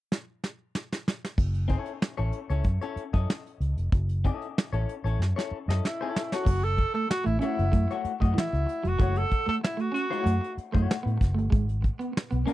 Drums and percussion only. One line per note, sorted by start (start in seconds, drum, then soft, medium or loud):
0.12 snare medium
0.44 snare medium
0.75 snare medium
0.92 snare medium
1.08 snare medium
1.25 snare medium
1.38 kick loud
1.38 crash medium
1.54 closed hi-hat medium
1.69 kick medium
1.69 closed hi-hat medium
1.86 closed hi-hat soft
2.02 snare loud
2.17 closed hi-hat soft
2.32 closed hi-hat medium
2.50 closed hi-hat medium
2.64 kick medium
2.64 closed hi-hat medium
2.82 closed hi-hat soft
2.97 closed hi-hat medium
3.14 kick medium
3.14 closed hi-hat soft
3.30 snare loud
3.46 closed hi-hat soft
3.61 closed hi-hat medium
3.78 closed hi-hat soft
3.92 kick loud
3.92 closed hi-hat medium
4.09 closed hi-hat medium
4.24 kick medium
4.24 closed hi-hat medium
4.41 closed hi-hat soft
4.58 snare loud
4.73 closed hi-hat soft
4.89 closed hi-hat medium
5.06 closed hi-hat medium
5.22 snare medium
5.38 snare soft
5.70 snare medium
5.85 snare medium
6.16 snare medium
6.32 snare medium
6.46 kick loud
6.46 crash loud
6.62 closed hi-hat medium
6.78 kick medium
6.78 closed hi-hat medium
6.94 closed hi-hat soft
7.11 snare loud
7.26 closed hi-hat soft
7.41 closed hi-hat medium
7.59 closed hi-hat medium
7.73 kick medium
7.73 closed hi-hat medium
7.91 closed hi-hat soft
8.05 closed hi-hat medium
8.22 kick medium
8.22 closed hi-hat soft
8.38 snare loud
8.54 closed hi-hat soft
8.69 closed hi-hat medium
8.85 closed hi-hat soft
9.00 kick loud
9.00 closed hi-hat medium
9.16 closed hi-hat medium
9.31 kick medium
9.31 closed hi-hat medium
9.48 closed hi-hat medium
9.64 snare loud
9.79 closed hi-hat soft
9.96 closed hi-hat medium
10.12 closed hi-hat medium
10.26 closed hi-hat medium
10.44 closed hi-hat medium
10.58 closed hi-hat medium
10.74 kick medium
10.74 closed hi-hat soft
10.91 snare loud
11.07 closed hi-hat soft
11.21 kick medium
11.21 snare soft
11.21 closed hi-hat medium
11.38 closed hi-hat soft
11.52 kick loud
11.52 closed hi-hat medium
11.69 closed hi-hat medium
11.84 kick medium
11.84 closed hi-hat soft
12.00 closed hi-hat soft
12.17 snare loud
12.31 closed hi-hat soft
12.47 closed hi-hat medium